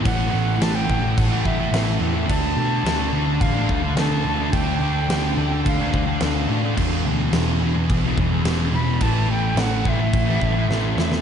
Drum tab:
CC |x---x---x---x---|x---x---x---x---|x---x---x---x---|x---x---x---x---|
SD |----o-------o---|----o-------o---|----o-------o---|----o-------o---|
BD |o-----o-o-o-----|o-------o-o-----|o-------o-o-----|o-------o-o-----|

CC |x---x---x-------|
SD |----o-------o-oo|
BD |o-----o-o-o-----|